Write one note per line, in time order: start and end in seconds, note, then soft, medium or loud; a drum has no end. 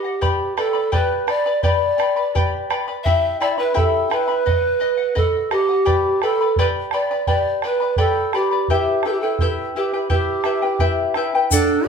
0.00 0.54 G4 medium
0.04 0.21 D#5 soft
0.04 0.21 F#5 soft
0.21 0.57 G4 medium
0.21 0.56 B4 medium
0.21 0.57 D5 medium
0.21 0.56 G5 medium
0.21 0.57 B5 medium
0.21 bombo low medium
0.57 0.95 A4 medium
0.57 0.74 B4 medium
0.57 0.73 D5 medium
0.57 0.75 G5 medium
0.57 0.72 B5 medium
0.57 bombo rim medium
0.73 0.91 B4 soft
0.73 0.92 D5 soft
0.73 0.92 B5 soft
0.92 1.28 G4 medium
0.92 1.26 B4 medium
0.92 1.31 B4 medium
0.92 1.27 D5 medium
0.92 1.26 G5 medium
0.92 1.27 B5 medium
0.92 bombo low medium
1.27 1.45 B4 medium
1.27 1.45 D5 medium
1.27 1.63 D5 medium
1.27 1.46 G5 medium
1.27 1.45 B5 medium
1.27 bombo rim medium
1.46 1.62 B4 soft
1.46 1.63 D5 soft
1.46 1.63 B5 medium
1.63 1.99 G4 medium
1.63 1.97 B4 medium
1.63 1.98 D5 medium
1.63 2.66 D5 loud
1.63 1.97 G5 medium
1.63 1.98 B5 medium
1.63 bombo low medium
1.98 2.16 B4 medium
1.98 2.15 D5 medium
1.98 2.16 G5 medium
1.98 2.15 B5 medium
1.98 bombo rim medium
2.16 2.34 B4 soft
2.16 2.34 D5 soft
2.16 2.34 B5 medium
2.35 2.70 G4 medium
2.35 2.69 B4 medium
2.35 2.70 D5 medium
2.35 2.69 G5 medium
2.35 2.70 B5 medium
2.35 bombo low medium
2.70 2.88 B4 medium
2.70 2.87 D5 medium
2.70 2.88 G5 medium
2.70 2.87 B5 medium
2.70 bombo rim medium
2.88 3.06 B4 soft
2.88 3.06 D5 soft
2.88 3.05 B5 soft
3.04 3.39 E4 medium
3.04 3.41 G4 medium
3.04 3.37 E5 loud
3.04 3.40 E5 medium
3.04 3.39 G5 medium
3.04 3.40 B5 medium
3.04 bombo low medium
3.40 3.58 E4 medium
3.40 3.57 D5 medium
3.40 3.57 E5 medium
3.40 3.58 G5 medium
3.40 3.57 B5 medium
3.40 bombo rim medium
3.58 3.73 E4 soft
3.58 3.79 B4 medium
3.58 3.73 E5 soft
3.58 3.74 B5 medium
3.74 4.09 E4 medium
3.74 4.10 G4 medium
3.74 4.12 A4 medium
3.74 4.10 E5 medium
3.74 4.09 G5 medium
3.74 4.10 B5 medium
3.74 bombo low medium
4.10 4.28 E4 medium
4.10 5.18 B4 loud
4.10 4.27 E5 medium
4.10 4.28 G5 medium
4.10 4.27 B5 medium
4.10 bombo rim medium
4.28 4.45 E4 soft
4.28 4.45 E5 soft
4.28 4.46 B5 medium
4.46 4.79 B4 medium
4.46 4.79 D#5 medium
4.46 4.80 F#5 medium
4.46 bombo low medium
4.80 4.99 B4 medium
4.80 4.98 D#5 medium
4.80 4.96 F#5 medium
4.97 5.14 D#5 soft
4.97 5.15 F#5 soft
5.15 5.54 A4 medium
5.15 5.50 B4 medium
5.15 5.51 D#5 medium
5.15 5.51 F#5 medium
5.15 bombo low medium
5.51 6.24 G4 medium
5.51 5.69 B4 medium
5.51 5.69 D#5 medium
5.51 5.68 F#5 medium
5.51 bombo rim medium
5.69 5.86 D#5 soft
5.69 5.85 F#5 soft
5.85 6.22 G4 medium
5.85 6.21 B4 medium
5.85 6.22 D5 medium
5.85 6.22 G5 medium
5.85 6.22 B5 medium
5.85 bombo low medium
6.22 6.58 A4 medium
6.22 6.41 B4 medium
6.22 6.40 D5 medium
6.22 6.41 G5 medium
6.22 6.40 B5 medium
6.22 bombo rim medium
6.41 6.58 B4 soft
6.41 6.58 D5 soft
6.41 6.58 B5 soft
6.56 6.94 G4 medium
6.56 6.67 B4 medium
6.56 6.92 B4 medium
6.56 6.93 D5 medium
6.56 6.92 G5 medium
6.56 6.93 B5 medium
6.56 bombo low medium
6.91 7.10 B4 medium
6.91 7.26 D5 medium
6.91 7.10 D5 medium
6.91 7.11 G5 medium
6.91 7.10 B5 medium
6.91 bombo rim medium
7.11 7.27 B4 soft
7.11 7.27 D5 soft
7.11 7.27 B5 soft
7.27 7.63 G4 medium
7.27 7.63 B4 medium
7.27 7.63 D5 medium
7.27 7.62 D5 medium
7.27 7.62 G5 medium
7.27 7.64 B5 medium
7.27 bombo low medium
7.62 7.80 B4 medium
7.62 8.00 B4 medium
7.62 7.80 D5 medium
7.62 7.81 G5 medium
7.62 7.79 B5 medium
7.62 bombo rim soft
7.80 7.97 B4 soft
7.80 7.97 D5 soft
7.80 7.97 B5 soft
7.96 8.34 G4 medium
7.96 8.36 A4 medium
7.96 8.33 B4 medium
7.96 8.33 D5 medium
7.96 8.33 G5 medium
7.96 8.34 B5 medium
7.96 bombo low medium
8.33 8.70 G4 medium
8.33 8.52 B4 medium
8.33 8.51 D5 medium
8.33 8.52 G5 medium
8.33 8.50 B5 medium
8.33 bombo rim medium
8.51 8.69 B4 soft
8.51 8.70 D5 soft
8.51 8.69 B5 medium
8.68 9.04 E4 medium
8.68 9.05 G4 medium
8.68 9.08 G4 medium
8.68 9.05 B4 medium
8.68 9.04 E5 medium
8.68 9.06 G5 medium
8.68 bombo low medium
9.03 9.23 E4 medium
9.03 9.14 A4 medium
9.03 9.22 B4 medium
9.03 9.23 E5 medium
9.03 bombo rim medium
9.07 9.22 G5 medium
9.12 9.22 G4 medium
9.21 9.40 E4 soft
9.21 9.49 A4 medium
9.21 9.40 B4 soft
9.21 9.40 G5 soft
9.39 9.75 E4 medium
9.39 9.76 G4 medium
9.39 9.76 B4 medium
9.39 9.75 E5 medium
9.39 9.76 G5 medium
9.39 bombo low medium
9.76 9.93 E4 medium
9.76 10.09 G4 medium
9.76 9.92 B4 medium
9.76 9.94 E5 medium
9.76 9.92 G5 medium
9.94 10.09 E4 soft
9.94 10.09 B4 soft
9.94 10.09 G5 medium
10.10 10.44 E4 medium
10.10 10.45 G4 medium
10.10 11.13 G4 medium
10.10 10.44 B4 medium
10.10 10.43 E5 medium
10.10 10.45 G5 medium
10.10 bombo low medium
10.44 10.63 E4 medium
10.44 10.62 B4 medium
10.44 10.63 E5 medium
10.44 10.61 G5 medium
10.44 bombo rim medium
10.62 10.79 E4 soft
10.62 10.79 B4 soft
10.62 10.79 G5 soft
10.79 11.14 E4 medium
10.79 11.16 G4 medium
10.79 11.16 B4 medium
10.79 11.14 E5 medium
10.79 11.15 G5 medium
10.79 bombo low medium
11.14 11.33 E4 medium
11.14 11.34 B4 medium
11.14 11.33 E5 medium
11.14 11.34 G5 medium
11.14 bombo rim medium
11.35 11.52 E4 soft
11.35 11.52 B4 medium
11.35 11.52 G5 medium
11.51 11.88 D4 medium
11.51 11.87 A4 medium
11.51 11.87 D5 medium
11.51 11.87 F#5 medium
11.51 bombo low medium
11.51 shaker medium